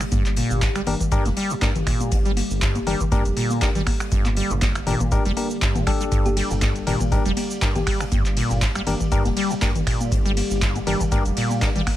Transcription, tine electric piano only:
0.87 D4 G4 A#4
1.12 D4 G4 A#4
1.62 D4 G4 A#4
2.87 D4 G4 A#4
3.12 D4 G4 A#4
3.62 D4 G4 A#4
4.87 D4 G4 A#4
5.12 D4 G4 A#4
5.37 D4 G4 A#4
5.87 D4 G4 A4
6.87 D4 G4 A#4
7.12 D4 G4 A#4
7.62 D4 G4 A#4
8.87 D4 G4 A#4
9.12 D4 G4 A#4
9.62 D4 G4 A#4
10.87 D4 G4 A#4
11.12 D4 G4 A#4
11.62 D4 G4 A#4

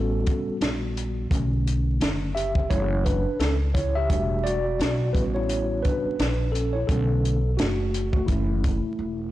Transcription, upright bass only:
Already playing: A1
0.48 muted upright bass stroke
0.61 A#1
1.31 B1
2.01 F#1
2.71 F#1
3.26 muted upright bass stroke
3.39 C#2
4.10 E1
4.79 B1
5.15 A1
6.05 muted upright bass stroke
6.19 A#1
6.89 B1
7.59 F#1
8.29 F#1
8.86 muted upright bass stroke
8.99 E1

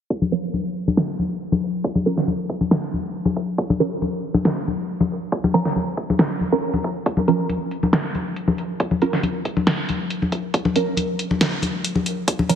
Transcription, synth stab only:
0.32 F3 C#4 A#4
2.06 F3 C#4 A#4
3.80 F3 C#4 A#4
5.54 F3 C#4 A#4
6.52 F3 C#4 A#4
7.28 F3 C#4 A#4
9.02 F3 C#4 A#4
10.76 F3 C#4 A#4
12.49 F3 C#4 A#4

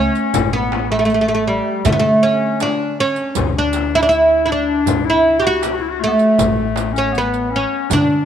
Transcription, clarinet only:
Already playing: C#4
0.53 B3
0.91 A3
1.49 G3
1.86 A3
1.99 A3
2.23 C#4
2.60 D4
3.54 D4
4.06 E4
4.48 D4
5.05 E4
5.41 F#4
5.63 G4
5.73 F#4
5.81 E4
5.89 F#4
6.01 A3
6.07 B3
6.13 A3
6.93 C#4
7.12 B3
7.51 C#4
7.90 D4

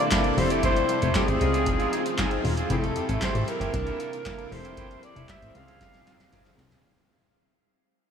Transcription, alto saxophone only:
Already playing: D5
0.39 C5
0.65 C5
1.17 G#4
2.72 A4
3.24 C5
3.49 A#4
4.53 C5
5.04 D5
5.30 E5
5.55 F5

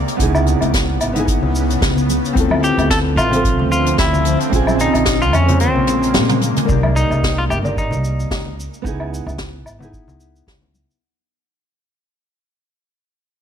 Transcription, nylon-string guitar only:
0.17 B3 D#4
0.21 E4 G#4
1.13 B3 D#4 E4
1.19 G#4
2.33 C4 E4
2.37 F4 A4
3.29 F3 C4 E5
3.35 A4
4.50 C4 C#4
4.54 F4 G#4
5.45 C#3 C4 F4
5.52 G#4
6.65 A#3 D5
6.69 D#4 G4
7.62 A#3 D5
7.66 D#4 G4
8.82 B3 D#4
8.86 E4 G#4
9.79 B3 D#4 E4
9.84 G#4

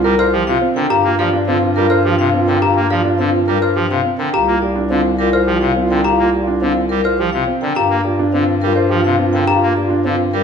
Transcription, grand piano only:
0.04 A#4
0.19 C5
0.34 G4
0.47 F4
0.62 C4
0.76 A#4
0.90 G4
1.04 F4
1.19 G4
1.33 D4
1.48 C4
1.62 F4
1.77 A#4
1.90 C5
2.05 G4
2.34 C4
2.47 A#4
2.62 G4
2.76 F4
2.90 G4
3.04 D4
3.19 C4
3.33 F4
3.47 A#4
3.62 C5
3.76 G4
4.05 C4
4.19 A#4
4.33 G4
4.47 F4
4.62 G4
4.76 D4
4.90 C4
5.33 C5
5.47 G4
5.76 C4
5.91 A#4
6.05 G4
6.18 F4
6.33 G4
6.47 D4
6.62 C4
7.05 C5
7.19 G4
7.47 C4
7.62 A#4
7.76 G4
8.05 G4
8.19 D4
8.33 C4
8.76 C5
8.90 G4
9.18 C4
9.33 A#4
9.47 G4
9.76 G4
9.90 D4
10.04 C4

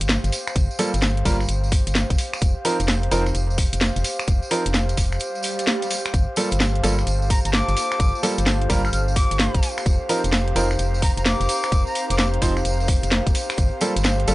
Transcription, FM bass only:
0.01 G1
0.24 G1
0.56 G1
0.94 G1
1.25 G1
1.49 G1
1.87 G1
2.10 G1
2.42 F1
2.80 F1
3.12 F1
3.35 F1
3.73 F1
3.96 F1
4.28 F1
4.66 F1
4.98 F1
6.14 G1
6.52 G1
6.84 G1
7.07 G1
7.45 G1
7.69 G1
8.00 G1
8.38 G1
8.70 G1
8.93 G1
9.31 G1
9.54 G1
9.86 F1
10.24 F1
10.56 F1
10.79 F1
11.17 F1
11.40 F1
11.72 F1
12.10 F1
12.42 F1
12.65 F1
13.03 F1
13.27 F1
13.58 G1
13.96 G1
14.28 G1

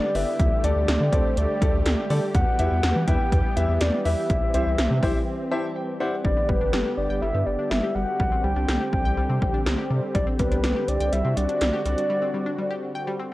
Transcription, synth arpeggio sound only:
6.25 G3
6.37 B3
6.49 G3
6.61 D4
6.73 G3
6.86 G4
7.10 G5
7.22 G3
7.34 B3
7.47 G3
7.59 D4
7.71 G3
7.83 G4
7.96 G3
8.20 G3
8.32 C4
8.44 G3
8.56 D4
8.69 G3
8.81 G4
9.05 G5
9.17 G3
9.30 C4
9.42 G3
9.54 D4
9.66 G3
9.78 G4
9.90 G3
10.15 G3
10.27 C4
10.39 G3
10.52 D4
10.64 G3
10.76 G4
11.00 G5
11.12 G3
11.25 C4
11.37 G3
11.49 D4
11.61 G3
11.73 G4
11.86 G3
12.10 G3
12.22 C4
12.34 G3
12.46 D4
12.58 G3
12.71 G4
12.95 G5
13.07 G3
13.20 C4

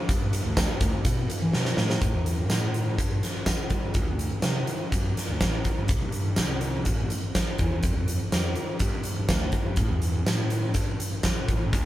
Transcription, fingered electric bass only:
0.08 G2
0.45 D2
0.81 D2
1.05 B2
1.42 E3
1.55 B2
1.77 A2
2.02 A2
2.14 E2
2.49 A2
2.99 G2
3.70 G3
3.95 D2
4.08 D2
4.42 C3
4.93 F#2
5.29 D2
5.41 A1
5.78 G2
5.89 C2
6.02 G2
6.38 C2
6.86 A1
7.60 E2
7.84 F2
7.96 F2
8.33 F2
8.80 G2
9.18 G2
9.29 D2
9.65 G2
9.77 A2
9.90 E2
10.28 A2
10.75 G2
11.48 A1
11.73 D2

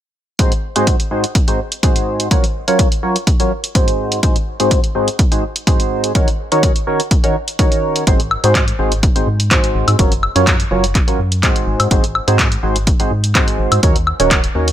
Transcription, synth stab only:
0.39 G#2 C4 D#4 F#4 G#4 C5
0.76 G#2 C4 D#4 F#4 G#4 C5
1.11 G#2 C4 D#4 F#4 G#4 C5
1.48 G#2 C4 D#4 F#4 G#4 C5
1.83 G#2 C4 D#4 F#4 G#4 C5
2.31 F#3 C#4 F4 F#4 A#4 C#5
2.68 F#3 C#4 F4 F#4 A#4 C#5
3.03 F#3 C#4 F4 F#4 A#4 C#5
3.40 F#3 C#4 F4 F#4 A#4 C#5
3.75 G#2 C4 D#4 F#4 G#4 C5
4.23 G#2 C4 D#4 F#4 G#4 C5
4.60 G#2 C4 D#4 F#4 G#4 C5
4.95 G#2 C4 D#4 F#4 G#4 C5
5.32 G#2 C4 D#4 F#4 G#4 C5
5.67 G#2 C4 D#4 F#4 G#4 C5
6.15 D#3 C#4 D#4 F#4 A#4 C#5
6.52 D#3 C#4 D#4 F#4 A#4 C#5
6.87 D#3 C#4 D#4 F#4 A#4 C#5
7.24 D#3 C#4 D#4 F#4 A#4 C#5
7.59 D#3 C#4 D#4 F#4 A#4 C#5
8.07 G#2 C4 D#4 F#4 G#4 C5
8.44 G#2 C4 D#4 F#4 G#4 C5
8.79 G#2 C4 D#4 F#4 G#4 C5
9.16 G#2 C4 D#4 F#4 G#4 C5
9.51 G#2 C4 D#4 F#4 G#4 C5
9.99 F#3 C#4 F4 F#4 A#4 C#5
10.36 F#3 C#4 F4 F#4 A#4 C#5
10.71 F#3 C#4 F4 F#4 A#4 C#5
11.08 F#3 C#4 F4 F#4 A#4 C#5
11.43 G#2 C4 D#4 F#4 G#4 C5
11.91 G#2 C4 D#4 F#4 G#4 C5
12.28 G#2 C4 D#4 F#4 G#4 C5
12.63 G#2 C4 D#4 F#4 G#4 C5
13.00 G#2 C4 D#4 F#4 G#4 C5
13.35 G#2 C4 D#4 F#4 G#4 C5
13.83 D#3 C#4 D#4 F#4 A#4 C#5
14.20 D#3 C#4 D#4 F#4 A#4 C#5
14.55 D#3 C#4 D#4 F#4 A#4 C#5

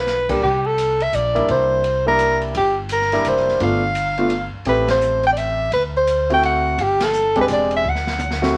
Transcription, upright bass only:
Already playing: B1
0.42 C2
1.12 A#1
1.48 C2
2.55 G1
3.24 F1
3.60 G1
4.54 muted upright bass stroke
4.65 A1
5.72 D2
6.78 G1
7.49 E1
7.84 D2

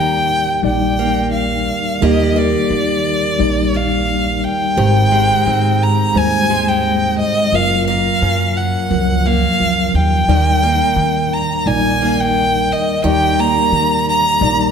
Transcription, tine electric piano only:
Already playing: D#2 D#3 G3 D#4 D5
0.63 G3 D#4 D5
2.01 D#2 D#3 G3 D#4 A#4
3.39 G3 D#4 D5
4.77 G#1 G#2 G#3 G4 C5
6.14 G3 G#3 C5
7.53 F#1 F#2 F#3 F4 A#4
8.91 F3 F#3 A#4
10.28 D#2 D#3 G3 D#4 D5
11.67 G3 D#4 D5
13.05 D#2 D#3 G3 D#4 D5
14.41 G3 D#4 D5

